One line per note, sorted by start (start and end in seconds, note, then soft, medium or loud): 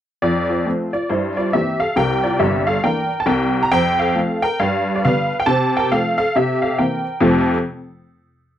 0.22 0.59 F2 medium
0.22 0.48 F4 medium
0.22 0.49 D5 medium
0.49 0.90 F4 soft
0.49 0.93 C5 soft
0.66 0.90 F3 soft
0.66 0.90 A3 soft
0.66 0.90 C4 soft
0.93 1.09 F4 soft
0.93 1.09 D5 medium
1.09 1.47 G2 medium
1.09 1.36 E4 medium
1.09 1.37 C5 medium
1.37 1.53 F4 medium
1.37 1.53 D5 medium
1.53 1.78 E3 soft
1.53 1.78 A#3 soft
1.53 1.78 C4 soft
1.53 1.79 G4 medium
1.53 1.80 E5 medium
1.80 1.96 A4 medium
1.80 1.96 F5 medium
1.96 2.32 C2 medium
1.96 2.31 C3 medium
1.96 2.23 A#4 medium
1.96 2.24 G5 medium
2.24 2.39 F4 soft
2.24 2.40 D5 medium
2.39 2.75 G1 medium
2.39 2.75 G2 medium
2.39 2.66 G4 medium
2.39 2.67 E5 medium
2.67 2.83 A4 medium
2.67 2.84 F5 medium
2.83 3.09 E3 soft
2.83 3.08 A#3 soft
2.83 3.08 D4 soft
2.83 3.18 A#4 medium
2.83 3.20 G5 medium
3.20 3.28 A5 medium
3.26 3.62 C2 medium
3.26 3.62 C3 medium
3.26 3.60 A#4 medium
3.26 3.63 G5 medium
3.63 3.71 A#5 medium
3.72 4.09 F2 medium
3.72 3.98 C5 medium
3.72 3.99 G5 loud
3.99 4.41 A4 soft
3.99 4.43 F5 medium
4.15 4.39 F3 soft
4.15 4.40 A3 medium
4.15 4.40 C4 soft
4.42 4.59 A#4 medium
4.42 4.59 G5 medium
4.60 4.97 G2 medium
4.60 4.93 B4 medium
4.60 4.95 F5 medium
4.95 5.03 D5 medium
5.05 5.29 D3 medium
5.05 5.29 G3 medium
5.05 5.29 B3 medium
5.05 5.38 B4 medium
5.05 5.39 F5 medium
5.40 5.47 G5 medium
5.46 5.84 C3 medium
5.46 5.75 C5 medium
5.46 5.76 A5 loud
5.77 5.91 A#4 medium
5.77 5.91 G5 medium
5.92 6.15 F3 soft
5.92 6.16 A3 medium
5.92 6.16 C4 medium
5.92 6.17 A4 medium
5.92 6.16 F5 medium
6.18 6.34 A4 medium
6.18 6.34 F5 medium
6.36 6.72 C3 medium
6.36 6.61 G4 medium
6.36 6.63 E5 medium
6.62 6.78 A4 medium
6.62 6.78 F5 medium
6.78 7.03 E3 soft
6.78 7.03 A#3 soft
6.78 7.03 C4 soft
6.78 7.19 A#4 medium
6.78 7.22 G5 medium
7.21 7.50 F2 loud
7.21 7.50 C3 medium
7.21 7.50 A3 medium
7.21 7.50 C4 medium
7.21 7.50 F4 medium
7.21 7.50 A4 medium
7.21 7.50 A5 medium